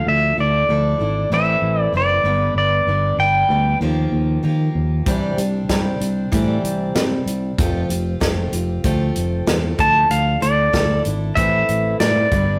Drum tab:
HH |--------|--------|xxxxxxxx|xxxxxxxx|
SD |--------|--------|--o---o-|--o---o-|
BD |--------|--------|o-o-o---|o-o-o--o|

HH |xxxxxxxx|
SD |--o---o-|
BD |--o-o--o|